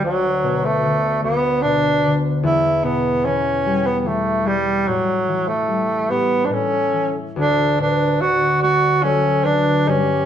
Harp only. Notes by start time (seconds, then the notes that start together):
Already playing: A3 F#4
0.03 D2
0.43 B2
0.83 D3
1.24 D2
1.64 B2
2.05 D3
2.43 E2
2.83 B2
3.24 E3
3.66 G3
4.06 E3
4.46 G3
4.88 A2
5.28 E3
5.68 G3
6.10 A2
6.49 A2
6.93 E3
7.36 D2
7.78 A2
8.20 D3
8.63 A3
9.03 F#3
9.45 D3
9.87 G2